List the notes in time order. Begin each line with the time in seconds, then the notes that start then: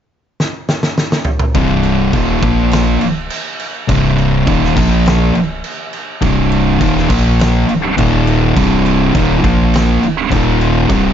0.40 snare
0.69 snare
0.83 snare
0.98 snare
1.12 snare
1.25 mid tom
1.39 mid tom
1.55 C1 C2 G2 C3, kick, crash
1.83 crash
2.13 D#1 D#2 A#2 D#3, kick, crash
2.42 A#1 A#2 F3 A#3, kick, crash
2.71 snare, crash
3.01 C1, muted distorted electric guitar stroke, crash
3.30 crash
3.60 crash
3.88 C1 C2 G2 C3, kick, crash
4.18 crash
4.47 D#1 D#2 A#2 D#3, kick, crash
4.64 snare
4.76 A#1 A#2 F3 A#3, kick, crash
5.06 snare, crash
5.34 C1, muted distorted electric guitar stroke, crash
5.64 crash
5.93 crash
6.21 C1 C2 G2 C3, kick, crash
6.52 crash
6.80 D#1 D#2 A#2 D#3, kick, crash
6.98 snare
7.09 A#1 A#2 F3 A#3, kick, crash
7.39 snare, crash
7.68 C1, muted distorted electric guitar stroke, crash
7.97 D#1 D#2 A#2 D#3, kick, crash
8.27 crash
8.56 C1 C2 G2 C3, kick, crash
8.86 crash
9.14 D#1 D#2 A#2 D#3, kick, crash
9.44 A#1 A#2 F3 A#3, kick, crash
9.74 snare, crash
10.02 C1, muted distorted electric guitar stroke, crash
10.30 D#1 D#2 A#2 D#3, kick, crash
10.61 crash
10.89 C1 C2 G2 C3, kick, crash